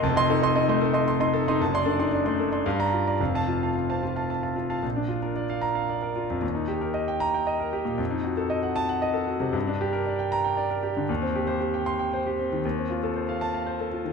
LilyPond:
\new Staff \with { instrumentName = "Grand piano" } { \time 3/4 \key f \mixolydian \tempo 4 = 115 << { a''16 <ees'' c'''>16 a'16 <ees'' c'''>16 ees''16 <ees'' c'''>16 a'16 <ees'' c'''>16 c'''16 <ees'' c'''>16 a'16 <ees'' c'''>16 | a''16 <d'' c'''>16 a'16 <d'' c'''>16 d''16 <d'' c'''>16 a'16 <d'' c'''>16 f''16 <d'' bes''>16 f'16 <d'' bes''>16 | f''16 <f'' a''>16 f'16 <f'' a''>16 f''16 <f'' a''>16 f'16 <f'' a''>16 a''16 <f'' a''>16 f'16 <f'' a''>16 | r4. bes''8 r4 |
r4. bes''8 r4 | r4. a''8 r4 | r4. bes''8 r4 | r4. c'''8 r4 |
r4. a''8 r4 | } \\ { <f,, f,>8 ees'8 ees'16 a8 r8 ees'8 ees'16 | <fis,, fis,>8 d'16 ees'16 d'16 a8 r16 g,4 | <f,, f,>4~ <f,, f,>16 c'8 r4 r16 | bes,,16 d'16 f'16 bes'16 d''16 f''8 f''16 d''16 bes'16 f'16 f,16 |
ees,16 ees'16 g'16 bes'16 ees''16 g''8 g''16 ees''16 bes'16 g'16 bes,16 | f,16 ees'16 ges'16 a'16 ees''16 ges''8 ges''16 ees''16 a'16 ges'16 c16 | g,16 d'16 g'16 bes'16 d''16 g''8 g''16 d''16 bes'16 g'16 d16 | ees,16 c'16 g'16 c''16 g'16 g''8 g''16 c''16 g'16 c'16 ees16 |
ees,16 c'16 f'16 a'16 c''16 f''8 f''16 c''16 a'16 f'16 ees16 | } >> }